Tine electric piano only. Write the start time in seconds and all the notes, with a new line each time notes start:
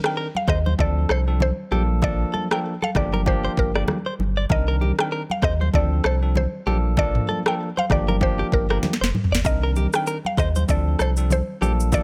0.04 D#3 C4 D4 A#4
0.78 F3 C4 D4 A4
1.27 F3 C4 D4 A4
1.71 F3 A#3 D4 A4
2.02 F3 A#3 D4 A4
2.51 F3 A#3 D4 A4
2.95 F3 A#3 D4 G4
3.26 F3 A#3 D4 G4
3.75 F3 A#3 D4 G4
4.50 D#3 C4 D4 A#4
4.98 D#3 C4 D4 A#4
5.73 F3 C4 D4 A4
6.22 F3 C4 D4 A4
6.66 F3 A#3 D4 A4
6.97 F3 A#3 D4 A4
7.46 F3 A#3 D4 A4
7.90 F3 A#3 D4 G4
8.21 F3 A#3 D4 G4
8.70 F3 A#3 D4 G4
9.45 D#3 C4 D4 A#4
9.93 D#3 C4 D4 A#4
10.68 F3 C4 D4 A4
11.17 F3 C4 D4 A4
11.61 F3 A#3 D4 A4
11.92 F3 A#3 D4 A4